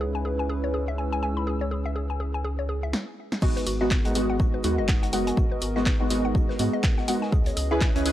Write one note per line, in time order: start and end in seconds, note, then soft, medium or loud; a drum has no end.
0.00 2.93 C#2 medium
0.00 2.90 G#3 medium
0.00 2.90 C#4 medium
0.00 2.93 C#4 medium
0.00 2.89 D#4 medium
0.00 2.90 E4 medium
0.00 2.93 G#4 medium
0.00 0.10 G#4 medium
0.00 2.90 B4 medium
0.15 0.17 G#5 medium
0.25 0.29 G#4 medium
0.25 2.94 E6 medium
0.39 0.42 G#5 medium
0.50 0.55 G#4 loud
0.64 0.68 C#5 medium
0.74 0.83 G#4 medium
0.88 0.94 E5 medium
0.98 1.04 G#5 medium
1.13 1.17 G#5 loud
1.23 1.26 G#5 loud
1.37 1.41 B5 medium
1.47 1.53 G#4 loud
1.61 1.65 C#5 medium
1.71 1.80 G#4 medium
1.86 1.92 E5 medium
1.96 2.04 G#4 medium
2.10 2.12 G#5 medium
2.20 2.24 G#4 medium
2.34 2.37 G#5 medium
2.44 2.50 G#4 loud
2.59 2.63 C#5 medium
2.69 2.78 G#4 medium
2.83 2.89 E5 medium
2.93 snare loud
3.32 snare medium
3.42 3.60 G#1 loud
3.42 3.75 G#3 loud
3.42 3.75 B3 loud
3.42 7.29 B3 medium
3.42 3.75 D#4 medium
3.42 3.48 F#4 loud
3.42 7.29 F#4 medium
3.42 3.75 F#4 loud
3.42 8.12 G#4 medium
3.42 7.29 A#4 medium
3.42 8.12 D#5 medium
3.42 kick loud
3.42 crash loud
3.42 shaker medium
3.56 3.61 B4 medium
3.56 closed hi-hat soft
3.67 3.97 G#1 medium
3.67 3.75 F#4 medium
3.67 open hi-hat loud
3.67 shaker medium
3.81 3.95 G#3 medium
3.81 3.95 B3 medium
3.81 3.95 D#4 medium
3.81 3.95 F#4 loud
3.81 3.87 D#5 medium
3.85 7.32 D#5 medium
3.91 4.00 F#4 medium
3.91 kick loud
3.91 snare loud
3.91 clap loud
3.91 shaker medium
4.05 4.58 G#1 loud
4.05 4.13 G#3 medium
4.05 4.13 B3 medium
4.05 4.13 D#4 medium
4.05 4.13 F#4 loud
4.05 4.08 F#5 medium
4.05 closed hi-hat soft
4.15 4.62 G#3 loud
4.15 4.62 B3 medium
4.15 4.62 D#4 medium
4.15 4.19 F#4 medium
4.15 4.62 F#4 loud
4.15 open hi-hat loud
4.15 shaker medium
4.30 4.32 F#5 medium
4.40 4.46 F#4 loud
4.40 kick loud
4.40 shaker medium
4.54 4.58 B4 medium
4.64 4.80 D#2 loud
4.64 5.10 G#3 medium
4.64 5.10 B3 medium
4.64 5.11 D#4 medium
4.64 4.73 F#4 medium
4.64 5.11 F#4 loud
4.64 open hi-hat loud
4.64 shaker medium
4.78 5.32 F#1 medium
4.78 4.85 D#5 medium
4.88 4.94 F#5 medium
4.88 kick loud
4.88 snare loud
4.88 clap loud
4.88 shaker medium
5.03 5.07 F#5 loud
5.03 closed hi-hat soft
5.13 5.38 G#3 medium
5.13 5.38 B3 medium
5.13 5.38 D#4 medium
5.13 5.38 F#4 medium
5.13 5.16 F#5 loud
5.13 open hi-hat loud
5.13 shaker medium
5.27 5.31 G#5 medium
5.27 closed hi-hat soft
5.37 5.55 G#1 loud
5.37 5.43 F#4 loud
5.37 kick loud
5.37 shaker medium
5.52 5.56 B4 medium
5.61 5.92 G#1 medium
5.61 5.70 F#4 medium
5.61 open hi-hat loud
5.61 shaker medium
5.76 5.90 G#3 medium
5.76 5.90 B3 medium
5.76 5.90 D#4 medium
5.76 5.90 F#4 loud
5.76 5.82 D#5 medium
5.76 snare medium
5.86 5.95 F#4 medium
5.86 kick loud
5.86 snare loud
5.86 clap loud
5.86 shaker medium
6.00 6.54 G#1 loud
6.00 6.08 G#3 medium
6.00 6.08 B3 medium
6.00 6.08 D#4 medium
6.00 6.08 F#4 loud
6.00 6.03 F#5 medium
6.10 6.57 G#3 loud
6.10 6.57 B3 medium
6.10 6.57 D#4 medium
6.10 6.14 F#4 medium
6.10 6.57 F#4 loud
6.10 snare medium
6.10 open hi-hat loud
6.10 shaker medium
6.25 6.27 F#5 medium
6.35 6.41 F#4 loud
6.35 kick loud
6.35 shaker medium
6.49 6.53 B4 medium
6.49 snare medium
6.59 6.69 G#2 loud
6.59 7.06 G#3 medium
6.59 7.06 B3 medium
6.59 7.06 D#4 medium
6.59 6.68 F#4 medium
6.59 7.06 F#4 loud
6.59 open hi-hat loud
6.59 shaker medium
6.74 6.80 D#5 medium
6.83 6.89 F#5 medium
6.83 kick loud
6.83 snare loud
6.83 clap loud
6.83 shaker medium
6.98 7.02 F#5 loud
6.98 snare medium
7.08 7.31 G#3 medium
7.08 7.31 B3 medium
7.08 7.31 D#4 medium
7.08 7.31 F#4 medium
7.08 7.12 F#5 loud
7.08 open hi-hat loud
7.08 shaker medium
7.22 7.26 G#5 medium
7.22 snare soft
7.32 7.50 C#2 loud
7.32 8.12 C#4 medium
7.32 8.12 E4 medium
7.32 7.38 G#4 loud
7.32 8.12 B4 medium
7.32 kick loud
7.32 shaker medium
7.46 7.51 C#5 medium
7.46 closed hi-hat soft
7.57 7.88 C#2 medium
7.57 7.66 G#4 medium
7.57 open hi-hat loud
7.57 shaker medium
7.71 7.85 C#4 medium
7.71 7.85 E4 medium
7.71 7.85 G#4 medium
7.71 7.85 B4 loud
7.71 7.77 E5 medium
7.81 7.90 G#4 medium
7.81 kick loud
7.81 snare loud
7.81 clap loud
7.81 shaker medium
7.95 8.12 C#2 loud
7.95 8.03 C#4 medium
7.95 8.03 E4 medium
7.95 8.03 G#4 medium
7.95 8.03 B4 loud
7.95 7.98 G#5 medium
7.95 closed hi-hat soft
8.05 8.12 C#4 loud
8.05 8.12 E4 medium
8.05 8.09 G#4 medium
8.05 8.12 G#4 medium
8.05 8.12 B4 loud
8.05 open hi-hat loud
8.05 shaker medium